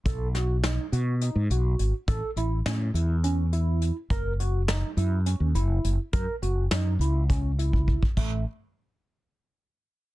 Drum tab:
CC |--------------|--------------|--------------|--------------|
HH |x-x-x-x-x-x-x-|x-x-x-x-x-x-x-|x-x-x-x-x-x-x-|x-x-x-x-x-x---|
SD |--o-o---------|----o---------|----o---------|----o---------|
BD |o-------------|o-------------|o-------------|o-------o--ooo|

CC |x-------------|
HH |--------------|
SD |--------------|
BD |o-------------|